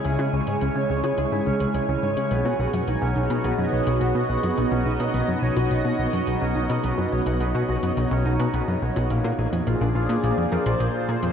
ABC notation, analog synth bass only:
X:1
M:4/4
L:1/16
Q:1/4=106
K:B
V:1 name="Analog synth bass" clef=bass
C,, C, C,, G,, C,, C, C,, C, C,, G,, C,, C,, C,, C,, G,, C, | B,,, B,, B,,, F,, B,,, B,,, B,,, B,, B,,, F,, B,,, B,,, B,,, B,, B,,, F,, | B,,, B,,, B,,, B,, B,,, F,, B,,, B,,, B,,, B,, B,,, F,, B,,, B,,, B,,, B,, | B,,, F,, B,,, B,,, B,,, B,, B,,, F,, B,,, B,,, B,,, B,, B,,, F,, B,,, B,,, |
A,,, A,, A,,, ^E,, A,,, A,,, A,,, A,, A,,, E,, E,, A,,, A,,, z A,, E,, |]